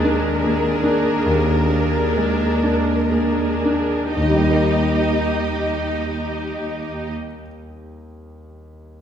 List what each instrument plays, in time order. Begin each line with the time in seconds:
Already playing: grand piano D#2 G#3 D4, viola section D4 G#4, violin section A#4
0.04 cello section D#2, grand piano D4
0.42 grand piano A#3, viola section D4 G#4
0.83 grand piano D4
1.26 grand piano D#2, cello section D#2
1.69 grand piano A#3, viola section D4 G#4
2.17 grand piano G#3
2.63 cello section D#2, grand piano D4
3.11 grand piano A#3, viola section D4 G#4
3.65 grand piano D4
4.14 cello section D#2, grand piano D#2, viola section D#4 G4, violin section D#5
4.23 grand piano D#3
4.29 grand piano G3
4.36 grand piano A#3
4.44 grand piano D#4
4.50 grand piano A#4